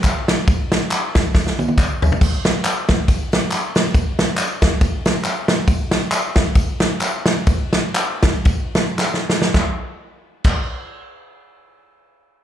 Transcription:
0.03 kick medium
0.03 clap medium
0.03 ride medium
0.03 tambourine medium
0.28 snare loud
0.28 ride medium
0.28 tambourine medium
0.48 kick loud
0.48 ride medium
0.48 tambourine medium
0.72 snare loud
0.72 ride medium
0.72 tambourine medium
0.91 clap loud
0.91 ride medium
0.91 tambourine loud
1.15 kick loud
1.15 snare loud
1.15 ride medium
1.15 tambourine soft
1.34 kick loud
1.34 snare medium
1.34 tambourine medium
1.47 snare medium
1.59 high tom medium
1.59 tambourine medium
1.68 high tom medium
1.78 kick loud
1.78 clap medium
1.78 tambourine medium
2.02 floor tom loud
2.02 tambourine medium
2.12 floor tom medium
2.21 kick loud
2.21 crash loud
2.21 tambourine medium
2.45 snare loud
2.45 ride medium
2.45 tambourine medium
2.64 clap loud
2.64 ride medium
2.64 tambourine loud
2.88 kick medium
2.88 snare loud
2.88 ride medium
2.88 tambourine medium
3.08 kick loud
3.08 ride medium
3.08 tambourine medium
3.32 snare loud
3.32 ride medium
3.32 tambourine medium
3.51 clap medium
3.51 ride medium
3.51 tambourine medium
3.75 snare loud
3.75 ride medium
3.75 tambourine medium
3.95 kick loud
3.95 ride medium
3.95 tambourine medium
4.19 snare loud
4.19 ride medium
4.19 tambourine medium
4.37 clap loud
4.37 ride medium
4.37 tambourine loud
4.62 kick loud
4.62 snare loud
4.62 ride medium
4.62 tambourine medium
4.81 kick loud
4.81 ride medium
4.81 tambourine medium
5.05 snare loud
5.05 ride medium
5.05 tambourine medium
5.24 clap medium
5.24 ride medium
5.24 tambourine medium
5.48 snare loud
5.48 ride medium
5.48 tambourine medium
5.68 kick loud
5.68 ride medium
5.68 tambourine medium
5.91 snare loud
5.91 ride medium
5.91 tambourine medium
6.11 clap loud
6.11 ride medium
6.11 tambourine loud
6.36 kick medium
6.36 snare loud
6.36 ride medium
6.36 tambourine medium
6.55 kick loud
6.55 ride medium
6.55 tambourine medium
6.80 snare loud
6.80 ride medium
6.80 tambourine medium
7.00 clap medium
7.00 ride medium
7.00 tambourine medium
7.26 snare loud
7.26 ride medium
7.26 tambourine medium
7.47 kick loud
7.47 ride medium
7.47 tambourine medium
7.73 snare loud
7.73 ride medium
7.73 tambourine medium
7.95 clap loud
7.95 ride medium
7.95 tambourine loud
8.22 kick loud
8.22 snare loud
8.22 ride medium
8.22 tambourine medium
8.45 kick loud
8.45 ride medium
8.45 tambourine medium
8.75 snare loud
8.75 ride medium
8.75 tambourine medium
8.98 snare medium
8.98 clap medium
8.98 tambourine medium
9.14 snare medium
9.30 snare medium
9.30 tambourine medium
9.42 snare medium
9.54 kick loud
9.54 snare medium
9.54 clap medium
10.44 kick loud
10.44 clap medium
10.44 crash medium

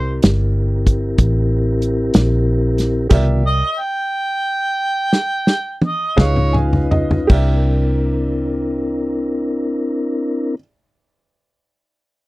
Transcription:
0.00 0.19 C2 medium
0.00 3.07 C4 medium
0.00 3.07 E4 medium
0.00 3.06 G4 soft
0.00 3.07 G4 medium
0.00 3.06 A#4 soft
0.00 3.08 A#4 medium
0.00 0.23 C5 medium
0.00 3.07 D5 soft
0.00 3.07 E5 soft
0.22 1.16 G1 medium
0.22 snare medium
0.22 closed hi-hat medium
0.87 kick medium
0.87 closed hi-hat medium
1.18 2.11 A1 medium
1.18 kick medium
1.18 closed hi-hat medium
1.82 closed hi-hat medium
2.14 3.08 A#1 medium
2.14 snare medium
2.14 closed hi-hat medium
2.78 snare soft
2.78 closed hi-hat medium
3.09 3.61 C2 medium
3.09 3.44 C#3 medium
3.09 3.44 D#3 medium
3.09 3.44 B3 soft
3.09 3.43 F4 medium
3.09 3.61 G4 soft
3.09 3.61 A#4 medium
3.09 3.62 D5 soft
3.09 3.62 E5 medium
3.09 kick loud
3.09 closed hi-hat medium
3.09 crash medium
3.47 3.81 D#5 loud
3.80 5.79 G5 medium
5.13 snare medium
5.47 snare medium
5.82 high tom medium
5.86 6.23 D#5 medium
6.16 7.27 C#2 medium
6.16 7.29 C#4 medium
6.16 7.29 D#4 medium
6.16 7.29 F4 medium
6.16 7.29 G#4 soft
6.16 7.29 B4 soft
6.16 7.29 B4 medium
6.16 6.90 D#5 soft
6.16 7.30 F5 medium
6.16 kick medium
6.16 snare medium
6.16 mid tom medium
6.21 6.55 C#5 medium
6.36 mid tom medium
6.53 6.88 G#5 soft
6.53 mid tom medium
6.73 floor tom medium
6.91 7.27 D#5 soft
6.91 floor tom medium
7.11 floor tom medium
7.27 10.55 C2 medium
7.27 10.55 C4 medium
7.27 10.54 D4 medium
7.27 10.55 E4 medium
7.27 10.52 G4 medium
7.27 10.54 A#4 medium
7.27 10.55 A#4 medium
7.27 10.55 D5 soft
7.27 kick medium
7.27 crash medium
7.32 10.57 E5 medium

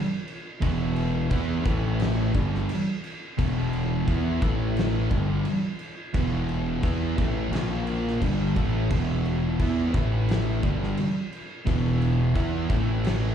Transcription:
0.28 crash medium
0.62 1.27 E1 medium
0.62 1.30 E2 loud
0.62 1.30 B2 loud
0.62 1.29 E3 loud
0.62 kick loud
0.62 crash loud
0.96 crash medium
1.30 1.63 E2 loud
1.30 1.64 E3 loud
1.30 1.65 B3 loud
1.30 1.65 E4 loud
1.30 kick loud
1.30 crash medium
1.65 2.31 A1 loud
1.65 2.33 A2 medium
1.65 2.34 E3 loud
1.65 2.34 A3 loud
1.65 kick loud
1.65 crash medium
1.99 snare loud
1.99 crash loud
2.34 2.67 G1 loud
2.34 2.68 G2 loud
2.34 2.68 D3 loud
2.34 2.69 G3 loud
2.34 kick loud
2.34 crash medium
2.55 snare soft
2.69 crash medium
3.04 crash medium
3.38 4.03 E1 medium
3.38 4.06 E2 loud
3.38 4.07 B2 loud
3.38 4.06 E3 loud
3.38 kick loud
3.38 crash medium
3.73 crash medium
4.07 4.39 E2 loud
4.07 4.41 E3 loud
4.07 4.41 B3 loud
4.07 4.41 E4 loud
4.07 kick loud
4.07 crash medium
4.42 5.07 A1 medium
4.42 5.10 A2 loud
4.42 5.10 E3 loud
4.42 5.10 A3 loud
4.42 kick loud
4.42 crash medium
4.76 snare loud
4.76 crash medium
5.11 5.43 G1 loud
5.11 5.44 G2 medium
5.11 5.44 D3 loud
5.11 5.45 G3 loud
5.11 kick loud
5.11 crash medium
5.45 crash medium
5.79 crash medium
6.14 6.79 E1 medium
6.14 6.82 E2 medium
6.14 6.82 B2 loud
6.14 6.82 E3 loud
6.14 kick loud
6.14 crash medium
6.49 crash medium
6.83 7.15 E2 loud
6.83 7.17 E3 medium
6.83 7.17 B3 loud
6.83 7.17 E4 loud
6.83 kick loud
6.83 crash medium
7.18 7.50 A1 loud
7.18 7.51 A2 loud
7.18 7.52 E3 loud
7.18 7.52 A3 loud
7.18 kick loud
7.18 crash medium
7.52 8.17 A#1 loud
7.52 8.20 A#2 loud
7.52 8.21 F3 loud
7.52 8.21 A#3 loud
7.52 snare loud
7.52 crash medium
7.87 crash medium
8.08 snare soft
8.21 8.54 G1 loud
8.21 8.55 G2 loud
8.21 8.56 D3 loud
8.21 8.56 G3 loud
8.21 kick loud
8.21 crash loud
8.56 8.88 A1 medium
8.56 8.89 A2 medium
8.56 8.90 E3 loud
8.56 8.90 A3 loud
8.56 kick loud
8.56 crash medium
8.90 9.55 E1 medium
8.90 9.58 E2 loud
8.90 9.59 B2 loud
8.90 9.58 E3 loud
8.90 kick loud
8.90 crash loud
9.25 crash medium
9.59 9.91 E2 loud
9.59 9.93 E3 medium
9.59 9.93 B3 loud
9.59 9.93 E4 loud
9.59 kick loud
9.59 crash medium
9.94 10.59 A1 loud
9.94 10.62 A2 loud
9.94 10.62 E3 loud
9.94 10.63 A3 loud
9.94 kick loud
9.94 crash medium
10.29 snare loud
10.29 crash medium
10.63 10.95 G1 loud
10.63 10.97 G2 loud
10.63 10.97 D3 loud
10.63 10.97 G3 loud
10.63 kick loud
10.63 crash medium
10.83 snare soft
10.97 crash medium
11.32 crash medium
11.67 12.31 E1 loud
11.67 12.34 E2 loud
11.67 12.35 B2 loud
11.67 12.35 E3 loud
11.67 kick loud
11.67 crash medium
12.02 crash medium
12.35 12.67 E2 loud
12.35 12.69 E3 loud
12.35 12.69 B3 medium
12.35 12.69 E4 loud
12.35 kick loud
12.35 crash medium
12.70 13.34 A1 loud
12.70 13.35 A2 loud
12.70 13.35 E3 loud
12.70 13.35 A3 loud
12.70 kick loud
12.70 crash medium
13.04 snare loud
13.04 crash loud

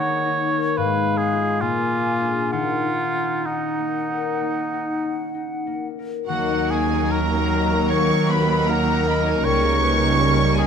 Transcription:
0.00 0.81 D#3 soft
0.00 0.18 G#3 soft
0.00 0.80 A#3 soft
0.00 0.52 D#4 medium
0.00 0.50 A#4 soft
0.00 0.79 C#5 medium
0.00 0.50 F#5 medium
0.25 0.80 D#4 soft
0.51 0.80 A#4 soft
0.77 1.65 G#2 soft
0.77 1.63 G#3 medium
0.77 1.19 B4 medium
0.77 1.63 F5 soft
1.04 1.65 B3 soft
1.18 1.62 G#4 medium
1.33 2.56 F4 soft
1.33 2.20 G#4 soft
1.61 2.56 A#2 soft
1.61 2.53 A#3 medium
1.61 2.52 F4 medium
1.61 2.54 G#5 soft
1.91 3.77 A#3 soft
2.21 2.56 D4 soft
2.21 2.56 G#4 soft
2.52 6.27 D#3 soft
2.52 5.89 D#4 soft
2.52 3.48 F4 medium
2.52 3.45 F#5 soft
2.83 3.45 D#4 soft
3.15 3.69 C#4 soft
3.46 4.72 D#4 soft
3.46 5.34 D#4 soft
3.46 5.88 F#5 soft
3.78 4.40 A#3 soft
4.10 5.98 A#4 soft
4.41 5.66 A#3 soft
4.73 5.33 D#4 soft
5.03 5.56 C#4 soft
5.34 6.56 D#4 soft
5.67 7.38 A#3 soft
5.99 7.64 A#4 soft
6.27 9.41 D#2 soft
6.27 9.48 D#3 soft
6.27 9.41 D#3 soft
6.27 9.41 F#3 soft
6.27 10.67 A#3 soft
6.27 6.49 A#3 soft
6.27 10.67 D#4 soft
6.27 6.72 F#4 soft
6.27 10.67 A#4 soft
6.27 6.72 F#5 soft
6.27 6.68 F#5 soft
6.51 6.72 D#4 soft
6.57 7.12 D#4 soft
6.70 6.93 A#3 soft
6.70 7.13 G#4 soft
6.70 7.13 G#5 soft
6.70 7.12 G#5 soft
6.86 7.31 C#4 soft
6.93 7.13 D#4 soft
7.11 7.34 A#3 soft
7.11 8.16 D#4 soft
7.11 7.89 A#4 medium
7.11 7.91 A#5 soft
7.11 7.92 A#5 medium
7.35 7.53 D#4 soft
7.39 7.90 A#3 soft
7.55 7.73 A#3 soft
7.66 9.18 A#4 soft
7.73 7.92 D#4 soft
7.90 8.93 A#3 soft
7.90 8.11 A#3 soft
7.90 8.72 A#4 soft
7.90 8.32 C#5 medium
7.90 8.31 C#6 medium
7.90 8.34 C#6 soft
8.13 8.32 D#4 soft
8.17 8.67 D#4 soft
8.30 8.51 A#3 soft
8.30 8.68 B4 soft
8.30 8.70 B5 medium
8.30 8.72 B5 soft
8.43 8.87 C#4 soft
8.52 8.70 D#4 soft
8.68 8.89 A#3 soft
8.68 10.67 D#4 soft
8.68 9.46 A#4 medium
8.68 9.09 F#5 medium
8.68 9.11 A#5 medium
8.68 9.44 A#5 medium
8.90 9.69 A#3 soft
8.90 9.08 D#4 soft
9.08 9.26 A#3 soft
9.08 9.45 D#5 soft
9.08 9.20 B5 soft
9.20 10.67 A#4 soft
9.20 9.28 A#5 medium
9.25 9.45 D#4 soft
9.25 9.37 G#5 soft
9.37 9.45 A#5 medium
9.44 10.67 C#2 medium
9.44 10.67 C#3 soft
9.44 10.67 G3 soft
9.44 9.63 G3 soft
9.44 9.84 A#4 soft
9.44 10.58 C#5 medium
9.44 10.60 C#6 medium
9.44 10.57 C#6 medium
9.64 9.83 A#3 soft
9.70 10.19 A#3 soft
9.83 10.02 C#4 soft
9.83 10.21 B4 soft
9.95 10.38 G#3 soft
10.03 10.21 D#4 soft
10.20 10.67 A#3 soft
10.20 10.40 C#4 soft
10.20 10.60 A#4 soft
10.40 10.59 A#3 soft
10.45 10.67 G3 soft
10.58 10.67 G3 soft
10.58 10.67 G#4 medium
10.58 10.67 D#5 soft
10.58 10.67 G#5 medium

